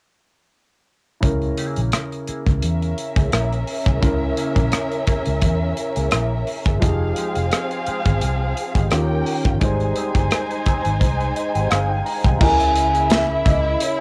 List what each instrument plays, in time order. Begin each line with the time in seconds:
1.21 fingered electric bass C#2, grand piano C#3 C#4 E4 A#4, kick, closed hi-hat
1.42 closed hi-hat
1.57 clean electric guitar A#3 E4 G#4, closed hi-hat
1.76 fingered electric bass A#1, closed hi-hat
1.92 muted clean electric guitar stroke, cross-stick, closed hi-hat
2.12 closed hi-hat
2.27 clean electric guitar A#3 E4 G#4, muted fingered electric bass stroke, closed hi-hat
2.46 fingered electric bass C#2, muted clean electric guitar stroke, kick, closed hi-hat
2.62 fingered electric bass E2, violin section C#4 A#4 E5, muted clean electric guitar stroke, closed hi-hat
2.82 muted clean electric guitar stroke, closed hi-hat
2.98 closed hi-hat
3.16 fingered electric bass C#2, clean electric guitar A#3 E4 G#4, kick, closed hi-hat
3.32 fingered electric bass A#1, clean electric guitar A#3 E4 A#4, cross-stick, closed hi-hat
3.52 closed hi-hat
3.67 muted clean electric guitar stroke, open hi-hat
3.86 fingered electric bass C2, clean electric guitar A#3 E4 G#4, kick, cross-stick
4.01 fingered electric bass C#2, grand piano C#3 C#4 E4 A#4, kick, closed hi-hat
4.37 clean electric guitar A#3 E4 G#4, closed hi-hat
4.56 fingered electric bass A#1, kick, closed hi-hat
4.72 muted clean electric guitar stroke, cross-stick, closed hi-hat
4.92 closed hi-hat
5.07 clean electric guitar A#3 E4 G#4, muted fingered electric bass stroke, kick, closed hi-hat
5.26 fingered electric bass C#2, muted clean electric guitar stroke, closed hi-hat
5.41 fingered electric bass E2, muted clean electric guitar stroke, kick, closed hi-hat
5.61 muted clean electric guitar stroke
5.77 closed hi-hat
5.96 fingered electric bass C#2, clean electric guitar A#3 E4 G#4, closed hi-hat
6.11 fingered electric bass A#1, clean electric guitar A#3 E4 A#4, cross-stick, closed hi-hat
6.47 muted clean electric guitar stroke, open hi-hat
6.65 fingered electric bass G1, clean electric guitar A#3 E4 G#4, kick, closed hi-hat
6.80 fingered electric bass F1, grand piano F3 D#4 G4 G#4, violin section C4 G#4 F5, kick, closed hi-hat
7.16 clean electric guitar G#3 D#4 G4, closed hi-hat
7.36 fingered electric bass F1, closed hi-hat
7.52 cross-stick, closed hi-hat
7.71 closed hi-hat
7.87 clean electric guitar G#3 D#4 G4, muted fingered electric bass stroke, closed hi-hat
8.05 fingered electric bass G#1, kick, closed hi-hat
8.21 fingered electric bass C2, muted clean electric guitar stroke, closed hi-hat
8.40 muted clean electric guitar stroke
8.57 closed hi-hat
8.75 fingered electric bass G#1, clean electric guitar G#3 D#4 G4, kick, closed hi-hat
8.91 fingered electric bass D#2, grand piano D#3 C#4 F4 G4, violin section C#4 A#4 G5, clean electric guitar C#4 F4 A#4, cross-stick, closed hi-hat
9.26 muted clean electric guitar stroke, open hi-hat
9.45 fingered electric bass G1, clean electric guitar C#4 F4 G4, kick
9.60 fingered electric bass G#1, grand piano G3 G#3 D#4 C5, violin section D#4 C5 G#5, kick, closed hi-hat
9.80 closed hi-hat
9.96 clean electric guitar G#3 C4 G4, closed hi-hat
10.15 fingered electric bass G1, kick, closed hi-hat
10.31 cross-stick, closed hi-hat
10.51 closed hi-hat
10.66 clean electric guitar G#3 C4 G4, muted fingered electric bass stroke, kick, cross-stick, closed hi-hat
10.85 fingered electric bass G#1, muted clean electric guitar stroke, closed hi-hat
11.01 fingered electric bass C2, muted clean electric guitar stroke, kick, closed hi-hat
11.20 muted clean electric guitar stroke, closed hi-hat
11.35 grand piano D#5, closed hi-hat
11.55 fingered electric bass G#1, clean electric guitar G#3 C4 G4, closed hi-hat
11.70 fingered electric bass G1, clean electric guitar G#3 C4 G#4, grand piano F5, cross-stick, closed hi-hat
11.89 grand piano G5
12.05 grand piano A#5, muted clean electric guitar stroke, open hi-hat
12.24 fingered electric bass C2, clean electric guitar G#3 C4 G4, kick, cross-stick
12.35 grand piano C#3, vibraphone A#5
12.40 fingered electric bass C#2, clean electric guitar A#3 E4 G#4, grand piano C#4 E4 A#4, violin section E4 E5, vibraphone G#5, kick, crash
12.60 closed hi-hat
12.75 muted clean electric guitar stroke, closed hi-hat
12.94 clean electric guitar A#3 E4 G#4, closed hi-hat
13.10 clean electric guitar A#3 E4 G#4, vibraphone E5, snare, closed hi-hat, tambourine
13.28 muted clean electric guitar stroke
13.44 fingered electric bass C#2, clean electric guitar A#3 E4 G#4, vibraphone D#5, kick, closed hi-hat
13.63 muted clean electric guitar stroke
13.79 vibraphone C#5, muted clean electric guitar stroke, closed hi-hat